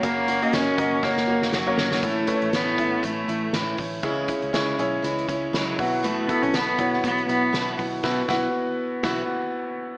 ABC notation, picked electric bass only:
X:1
M:4/4
L:1/16
Q:"Swing 16ths" 1/4=120
K:Alyd
V:1 name="Picked electric bass" clef=bass
F,,,4 F,,,2 F,,,2 F,,,2 F,,,2 F,,,2 F,,,2 | A,,,2 z A,,, A,,,2 G,,,2 A,,,2 A,,,2 A,,,2 A,,,2 | C,,2 z C,, C,,2 B,,,2 C,,2 C,,2 C,,2 B,,,2- | B,,,2 z B,,, B,,,2 B,,,2 B,,,2 B,,,2 B,,,2 B,,,2 |
B,,,2 B,,,2 z4 B,,,2 z6 |]